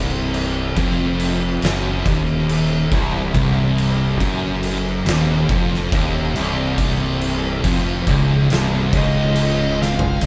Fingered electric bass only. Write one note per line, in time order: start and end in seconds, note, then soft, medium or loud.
0.00 0.73 C1 loud
0.77 1.59 F1 medium
1.62 2.03 F#1 medium
2.06 2.88 D#1 loud
2.92 3.32 C1 medium
3.35 4.17 C1 medium
4.20 5.03 F#1 medium
5.07 5.47 D#1 medium
5.50 5.90 F1 loud
5.92 6.32 D#1 medium
6.38 7.62 C1 loud
7.64 8.04 F1 medium
8.07 8.47 C#1 loud
8.52 8.91 C1 medium
8.93 10.18 C#1 medium
10.22 10.26 C1 medium